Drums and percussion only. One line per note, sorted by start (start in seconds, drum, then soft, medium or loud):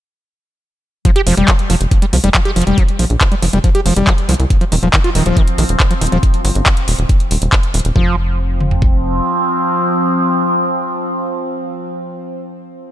1.05 kick loud
1.05 closed hi-hat medium
1.16 closed hi-hat medium
1.27 open hi-hat loud
1.37 closed hi-hat medium
1.48 kick loud
1.48 clap loud
1.48 closed hi-hat medium
1.59 closed hi-hat medium
1.70 open hi-hat loud
1.81 closed hi-hat medium
1.91 kick loud
1.91 closed hi-hat medium
2.02 closed hi-hat medium
2.13 open hi-hat loud
2.24 closed hi-hat medium
2.35 kick loud
2.35 clap loud
2.35 closed hi-hat medium
2.45 closed hi-hat medium
2.56 open hi-hat loud
2.62 closed hi-hat medium
2.67 closed hi-hat medium
2.78 kick loud
2.78 closed hi-hat medium
2.88 closed hi-hat medium
2.99 open hi-hat loud
3.10 closed hi-hat medium
3.21 kick loud
3.21 clap loud
3.21 closed hi-hat medium
3.32 closed hi-hat medium
3.42 open hi-hat loud
3.53 closed hi-hat medium
3.64 kick loud
3.64 closed hi-hat medium
3.75 closed hi-hat medium
3.86 open hi-hat loud
3.96 closed hi-hat medium
4.07 kick loud
4.07 clap loud
4.07 closed hi-hat medium
4.18 closed hi-hat medium
4.29 open hi-hat loud
4.34 closed hi-hat medium
4.40 closed hi-hat medium
4.50 kick loud
4.50 closed hi-hat medium
4.61 closed hi-hat soft
4.72 open hi-hat loud
4.83 closed hi-hat medium
4.94 kick loud
4.94 clap loud
4.94 closed hi-hat medium
5.04 closed hi-hat medium
5.15 open hi-hat loud
5.26 closed hi-hat medium
5.37 kick loud
5.37 closed hi-hat medium
5.48 closed hi-hat medium
5.58 open hi-hat loud
5.69 closed hi-hat medium
5.80 kick loud
5.80 clap loud
5.80 closed hi-hat medium
5.91 closed hi-hat medium
6.01 open hi-hat loud
6.07 closed hi-hat medium
6.12 closed hi-hat medium
6.23 kick loud
6.23 closed hi-hat medium
6.34 closed hi-hat medium
6.45 open hi-hat loud
6.55 closed hi-hat medium
6.66 kick loud
6.66 clap loud
6.66 closed hi-hat medium
6.77 closed hi-hat medium
6.88 open hi-hat loud
6.99 closed hi-hat soft
7.09 kick loud
7.09 closed hi-hat medium
7.20 closed hi-hat medium
7.31 open hi-hat loud
7.42 closed hi-hat medium
7.53 kick loud
7.53 clap loud
7.53 closed hi-hat medium
7.63 closed hi-hat medium
7.74 open hi-hat loud
7.80 closed hi-hat medium
7.85 closed hi-hat medium
7.96 kick loud
8.60 mid tom medium
8.71 floor tom medium
8.82 kick medium